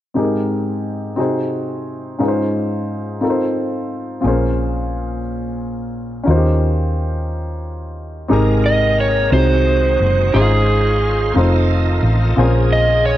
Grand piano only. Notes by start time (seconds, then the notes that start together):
0.14 G#2 C4 D#4 G4 G#4
0.18 A#4
1.16 C3 C4 D#4 F#4 G#4 C5
2.19 G#2 C#4 D#4 F4 G#4 B4
2.28 C5
3.21 C4 D#4 F4 A4 A#4
3.30 C5
4.21 A#2 C4 F4 G#4
4.25 C#4 A#4 C5
6.23 D#3 C#4 D#4 F4
6.29 F#4 C5
6.35 G4
8.28 G#2 C4 D#4 G4 G#4 A#4
9.32 C3 C4 D#4 F#4 G#4 C5
10.33 G#2 C#4 D#4 E4 G#4 C5
10.41 F4
11.34 C4 D#4 F4 A4 C5
12.36 A#2 C4 F4 G#4 A#4 C5
12.42 C#4